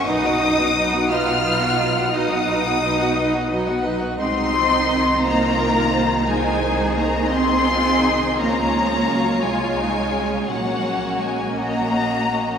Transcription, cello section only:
\new Staff \with { instrumentName = "Cello section" } { \time 12/8 \key b \lydian \tempo 4. = 57 dis'4. eis'4. dis'2~ dis'8 r8 | \key aes \mixolydian c'4. bes4. aes4 bes8 c'4. | bes4. aes4. ges4 aes8 bes4. | }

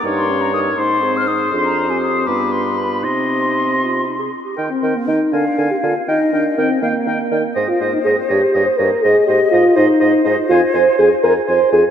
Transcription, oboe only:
\new Staff \with { instrumentName = "Oboe" } { \time 6/8 \key c \minor \tempo 4. = 81 des''4. c''4.~ | c''4. b'4. | ees''2~ ees''16 r8. | \key ees \major g''8 g''8 g''8 aes''8 aes''8 aes''8 |
g''8 g''8 g''8 g''8 g''8 g''8 | ees''8 ees''8 ees''8 ees''8 ees''8 ees''8 | ees''8 ees''8 ees''8 ees''8 ees''8 ees''8 | \key f \dorian aes''8 aes''8 aes''8 aes''8 aes''8 aes''8 | }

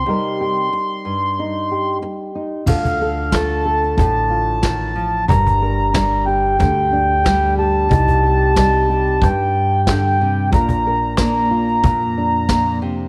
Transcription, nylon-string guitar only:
\new Staff \with { instrumentName = "Nylon-string guitar" } { \time 4/4 \key c \dorian \tempo 4 = 92 << { <g ees' g' bes'>8 g'4. ees'8 g'4 ees'8 | <f' a'>8 a'8 f'8 a'4 f'4. | <d' g' bes'>8 bes'8 d'8 g'4 d'4 g'8 | <ees' g'>8 g'8 ees'8 g'2~ g'8 |
<d' f' bes'>8 bes'8 d'8 f'4 d'4. | } \\ { c4 r8 g,4. r4 | d4 a4 a,4 ees8 f8 | g,4 g4 d4 g4 | c4 g4 g,4 d8 c8 |
bes,4 bes4 bes,4 bes,8 c8 | } >> }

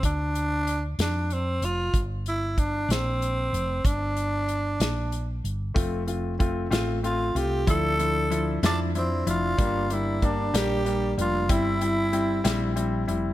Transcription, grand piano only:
\new Staff \with { instrumentName = "Grand piano" } { \time 6/8 \key g \dorian \tempo 4. = 63 r2. | r2. | r2. | <a c' f'>8 <a c' f'>8 <a c' f'>8 <a c' f'>8 <a c' f'>8 <a c' f'>8 |
<f d' e'>8 <f d' e'>8 <f d' e'>8 <f d' e'>8 <f d' e'>8 <f d' e'>8 | <g bes d'>8 <g bes d'>8 <g bes d'>8 <g bes d'>8 <g bes d'>8 <g bes d'>8 | <g c' e'>8 <g c' e'>8 <g c' e'>8 <g c' e'>8 <g c' e'>8 <g c' e'>8 | }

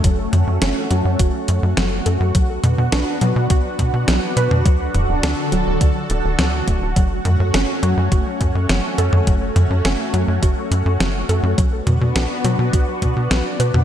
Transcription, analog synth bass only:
\new Staff \with { instrumentName = "Analog synth bass" } { \clef bass \time 4/4 \key fis \minor \tempo 4 = 104 fis,,8 fis,16 fis,16 fis,,16 r16 fis,16 fis,16 fis,,16 r16 fis,16 fis,16 fis,,8 fis,16 fis,16 | b,,8 b,16 b,16 b,,16 r16 b,16 b,16 b,,16 r16 b,16 b,16 b,,16 r16 b,16 b,16 | d,8 d,,16 d,,16 d,16 r16 d,,16 d,,16 d,16 r16 d,,16 d,,16 d,8 d,,16 d,,16 | fis,,8 fis,16 fis,16 fis,,16 r16 fis,16 fis,16 fis,,16 r16 fis,16 fis,16 fis,,16 r16 fis,16 fis,16 |
fis,,8 fis,16 fis,16 fis,,16 r16 fis,16 fis,16 fis,,16 r16 fis,16 fis,16 fis,,8 fis,16 fis,16 | b,,8 b,16 b,16 b,,16 r16 b,16 b,16 b,,16 r16 b,16 b,16 b,,16 r16 b,16 b,16 | }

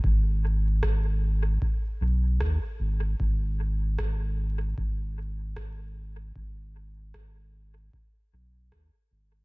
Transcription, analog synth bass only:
\new Staff \with { instrumentName = "Analog synth bass" } { \clef bass \time 4/4 \key gis \minor \tempo 4 = 76 gis,,2 r8 b,,8 dis,8 gis,,8 | gis,,2 gis,,2 | gis,,2 r8 b,,8 dis,8 gis,,8 | }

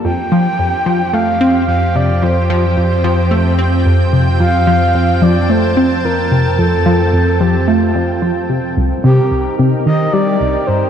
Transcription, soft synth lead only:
\new Staff \with { instrumentName = "Soft synth lead" } { \time 4/4 \key f \mixolydian \tempo 4 = 110 g''2 f''4 f''8 d''8 | c''8 c''2. r8 | f''4. d''8 c''4 bes'4 | a'4. g'8 f'4. r8 |
\key c \minor r8 g'4 r8 ees''8 d''4 c''8 | }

